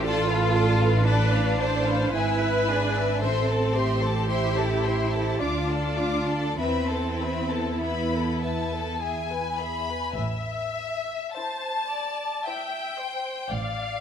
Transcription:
Already playing: A1
0.02 F4 A4 D5 A5
0.27 A4 B4 F5
0.53 A4 D5 A5
0.81 A4 B4 F5
1.06 D4 A4 B4 D5 A5
1.32 A4 B4 F5
1.58 A4 C5 D5 A5
1.85 A4 B4 F5
2.13 G#1 E4 G#4 B4 E5 G#5
2.40 B4 E5 G#5
2.67 D4 G#4 E5 G#5
2.95 B4 E5 G#5
3.21 A1 C4 A4 C5 E5 C6
3.48 A4 C5 A5
3.74 G4 C5 E5 C6
4.02 A4 C5 A5
4.29 E4 C5 E5 C6
4.56 A4 C5 A5
4.84 C5 E5 C6
5.13 A4 C5 A5
5.40 D2 D4 F4 F5 D6
5.69 A4 D5 A5
5.97 F4 F5 D6
6.27 A4 D5 A5
6.57 E2 C4 E4 B4 E5 B5
6.89 A4 B4 A5
7.20 B4 E5 B5
7.50 A4 B4 A5
7.80 B3 B4 E5 B5
8.11 A4 B4
8.41 B4 E5 A5
8.71 A4 B4
9.00 G#4 E5 G#5
9.29 B4 G#5
9.59 G#4 E5 B5
9.88 B4 G#5
10.15 A1 A2 E5
11.34 E4 C5 A5
11.91 D5
12.46 E4 C5 E5 G5
12.98 C5
13.51 A1 A2 D5 F5

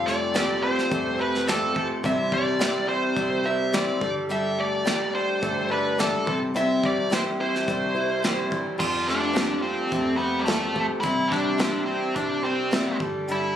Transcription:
Already playing: F1 F3 G3 C4 G4 A4
0.06 A3 D5, snare
0.34 F3 G3 C4 G4 A4, snare, closed hi-hat
0.63 C4 C5
0.79 snare
0.89 F1 G3 A3 C4 G4 A4, kick, closed hi-hat
1.18 C4 G4 A4 B4
1.35 snare
1.47 F3 G3 A3 C4 G4 A4, snare, closed hi-hat
1.74 F3 C4 G4 A4, kick
2.03 C2 C3 E3 G3 C4 E4 C5 E5, kick, closed hi-hat
2.32 G3 D5, kick
2.59 C3 E3 G3 C4 E4 G4 C5, snare, closed hi-hat
2.88 C4 C5
3.16 C2 G3 C4 E4 C5, kick, closed hi-hat
3.44 G3 C4 E4 C5 E5
3.73 C3 E3 G3 C4 E4 C5 D5, snare, closed hi-hat
4.01 G1 G3 D4 G4 A4, kick
4.29 G3 D4 G4 A4 E5, closed hi-hat
4.58 A3 D5
4.85 G3 D4 G4 A4, snare, closed hi-hat
5.14 D4 C5
5.41 G1 G3 A3 D4 G4 A4, kick, closed hi-hat
5.69 D4 G4 A4 B4
5.98 G3 A3 D4 G4 A4, snare, closed hi-hat
6.26 C2 C3 G3 C4 E4 C5, kick
6.54 C3 E3 G3 C4 E4 C5 E5, closed hi-hat
6.84 G3 D5, kick
7.10 C3 E3 G3 C4 E4 G4 C5, snare, closed hi-hat
7.41 E4 C5
7.56 snare
7.67 C2 G3 C4 E4 C5, kick, closed hi-hat
7.95 G3 C4 E4 C5
8.23 C3 E3 G3 C4 E4 C5, snare, closed hi-hat
8.51 E3 G3 C4 E4 C5, kick
8.78 F2 F3 G3 C4 F4 G4 A4, kick, crash
9.08 A3 D4, snare
9.33 F3 G3 C4 G4 A4, snare, closed hi-hat
9.62 C4
9.89 F2 G3 A3 C4 G4 A4, kick, closed hi-hat
10.17 B3 C4 G4 A4
10.39 G3
10.45 F3 G3 A3 C4 G4 A4, snare, closed hi-hat
10.74 F3 C4 G4 A4, kick
11.01 C2 C3 E3 G3 C4 E4 C5, kick, closed hi-hat
11.28 G3 D4, kick
11.32 snare
11.58 C3 E3 G3 C4 E4 G4 C5, snare, closed hi-hat
11.86 C4
12.14 C2 G3 C4 D4 E4 C5, kick, closed hi-hat
12.42 G3 C4 E4 C5
12.71 C3 E3 G3 C4 E4 C5, snare, closed hi-hat
12.99 G1 G3 D4 G4 A4, kick
13.28 G3 D4 E4 G4 A4, closed hi-hat

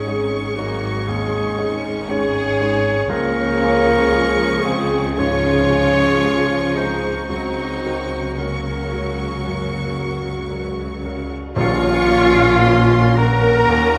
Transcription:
Already playing: G#1 G#2 D#3 G#3 C#4 D#4 G#4 C#5 C#6
0.06 G#3 D#4 C#5
0.55 F#3 G#3 A#3 D#4 F#4 C#5
1.04 D#2 G#3 C#4
1.08 G#4
1.58 G#3 D#4 C#5
2.08 G#3 C#4 D#4 G#4 C#5
2.60 G#3 D#4 C#5
3.09 C#2 C#3 F3 A#3 C#4 G#4 A#4 C#6
3.61 G#3 F4 G#4
4.11 G#3 F4 G#4
4.62 G#3 F4 G#4
4.67 C4
5.16 G#2 F3 C#4 F4 G#4 C#5 C#6
5.70 G#3 F4 G#4
6.24 G#3 F4 G#4
6.76 G#3 C4 D#4 F4 G#4 C5
7.29 C#2 C#3 F#3 C4 D#4 F#4 C5 C#6
7.85 F#3 F#4 A#4
8.36 F#3 A#3 C#4 F#4 A#4 C#6
8.93 F#3 F#4 A#4
9.45 F#2
9.98 F#3 F#4 A#4
10.51 F#3 F#4 A#4
11.05 F#3 F#4 A#4
11.55 A#1 A#2 A#3 C#4 F4 F5 C#6, tam-tam
11.84 C#4
12.08 A#3
12.35 C#4
12.62 A#3 C6
12.90 C#4
13.15 A#3 F#4 A#4 A#5
13.43 C#4
13.69 D#2 C#4 D#4
13.95 F4

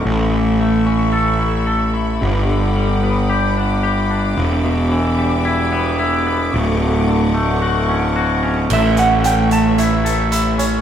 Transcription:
Already playing: A4
0.05 A1 A2 E5 B5 C#6
0.32 E3
0.60 A3
0.86 C#4
1.13 A4
1.39 E4
1.67 A4
1.94 E4
2.19 G1 G2 G4 F#5 D6
2.49 D3
2.76 G3
3.03 B3
3.30 G4
3.57 D4
3.83 G4
4.11 D4
4.37 E1 E2 E5
4.64 B2
4.92 E3
5.19 G3
5.45 E4
5.72 B3
5.99 E4
6.27 B3
6.53 D1 D2 A4 F#5 C#6
6.82 A2
7.08 D3
7.34 A3
7.62 F#4
7.89 C#4
8.16 F#4
8.43 C#4
8.70 A1 A2 A3 A4 B4 C#5 E5, crash
8.97 C#4 F#5, closed hi-hat
9.24 A3 G5, closed hi-hat
9.51 C#4 A5, closed hi-hat
9.78 E4 E5, closed hi-hat
10.05 A4, closed hi-hat
10.32 E4, closed hi-hat
10.58 C#4 C#5, closed hi-hat

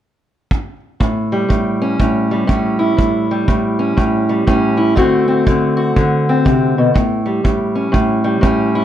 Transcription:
0.51 kick
1.00 A2, kick
1.32 G3
1.49 A2, kick
1.82 C#4
2.00 A2, kick
2.31 G3
2.47 A2 C#4, kick
2.79 E4
2.97 A2, kick
3.31 G3
3.48 A2, kick
3.79 C#4
3.97 A2, kick
4.29 G3
4.47 A2 C#4, kick
4.77 E4
4.95 D3 A3 C4 F#4, kick
5.28 C4
5.47 D3, kick
5.77 F#4
5.96 D3, kick
6.29 C4
6.45 C3, kick
6.78 B2
6.94 A2, kick
7.26 G3
7.44 A2, kick
7.75 C#4
7.92 A2, kick
8.24 G3
8.41 A2 C#4, kick
8.75 E4

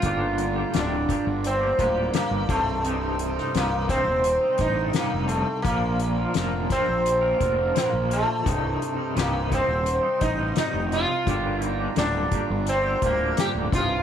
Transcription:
Already playing: F4 G5
0.02 G1 G2 D3 G3 A#3 D4 F4 G4 D5 A#5, kick, closed hi-hat
0.38 closed hi-hat
0.56 G3 A#3 D4 G4
0.73 D1 G2 D3 G3 A#3 D4 G4, snare, closed hi-hat
0.79 D4
1.08 G3 A#3 D4 G4, kick, closed hi-hat
1.27 G1, muted clean electric guitar stroke
1.44 C4, closed hi-hat
1.61 G3 A#3 D4 G4
1.77 D1 G3 A#3 D4 G4, kick, closed hi-hat
1.95 G3 A#3 D4 G4
2.13 G2 D3 G3 A#3 D4 G4, snare, closed hi-hat
2.31 G1
2.48 C1 C2 G2 C3 G3 A3 D#4 C5 C6, kick, closed hi-hat
2.67 muted clean electric guitar stroke
2.83 C2 G2 C3 G3 D#4, closed hi-hat
3.19 closed hi-hat
3.36 C3 G3 D#4, snare
3.53 C1 C2 G2 C3 G3 D#4, snare, closed hi-hat
3.57 A#3
3.88 G2 C3 G3 C4 D#4, kick, closed hi-hat
4.07 D#1, muted clean electric guitar stroke
4.24 closed hi-hat
4.41 C3 G3 D#4
4.58 A1 G2 C3 G3 D#4, kick, closed hi-hat
4.77 C3 G3 D#4
4.93 C2 G2 C3 G3 A#3, snare, closed hi-hat
4.98 D#4
5.13 F1
5.28 G2 C3 A3, closed hi-hat
5.32 G3 D#4
5.48 muted clean electric guitar stroke
5.62 A#1 A#2 F3 A#3 F4 D5, kick, closed hi-hat
5.67 A#3 D4 F4 A#4 A#5
6.00 closed hi-hat
6.19 A#3 D4 F4 A#4
6.34 F1 A#2 F3 A#3 D4 F4, snare, closed hi-hat
6.38 A#4
6.70 A#3 C4 D4 F4 A#4, kick, closed hi-hat
6.88 A#1, muted clean electric guitar stroke
7.06 closed hi-hat
7.21 A#3 D4 F4 A#4
7.38 F1 A#3 D4 F4 A#4, kick, closed hi-hat
7.56 A#3 D4 F4 A#4
7.74 A#2 F3 A#3 D4 F4 A#4, snare, closed hi-hat
7.93 A#1
8.08 A#3 D4 F4 A#4, closed hi-hat
8.13 A3
8.28 muted clean electric guitar stroke
8.44 C1 C2 G2 C3 G3 D#4 C5 G5, kick, closed hi-hat
8.48 D#4
8.82 closed hi-hat
8.97 C3 G3 D#4
9.14 C1 C2 G2 C3 G3 D#4, snare, closed hi-hat
9.19 A#3
9.50 G2 C3 G3 D#4, kick, closed hi-hat
9.54 C4
9.68 D#1, muted clean electric guitar stroke
9.86 closed hi-hat
10.03 C3 G3 D#4
10.20 A1 G2 C3 G3 D#4, kick, closed hi-hat
10.38 C3 G3 D#4
10.56 C2 G2 C3 G3 D#4, snare, closed hi-hat
10.74 F1
10.92 G2 C3 G3 D#4 F4, closed hi-hat
11.10 muted clean electric guitar stroke
11.26 G1 G2 D3 G3 A#3 D4 F4 G4 D5 A#5, kick, closed hi-hat
11.62 D#4, closed hi-hat
11.79 G3 A#3 D4 G4
11.95 D1 G2 D3 G3 A#3 D4 G4, snare, closed hi-hat
12.32 G3 A#3 D4 G4, kick, closed hi-hat
12.49 G1, muted clean electric guitar stroke
12.67 C4, closed hi-hat
12.83 G3 A#3 D4 G4
13.00 D1 G3 A#3 D4 G4, kick, closed hi-hat
13.05 A#3
13.18 G3 A#3 D4 G4
13.35 G2 D3 G3 A#3 D4 G4, snare, closed hi-hat
13.40 G4
13.55 D1
13.70 C1 C2 G2 C3 G3 D#4 C5 G5 C6, kick, closed hi-hat
13.74 F4
13.89 muted clean electric guitar stroke

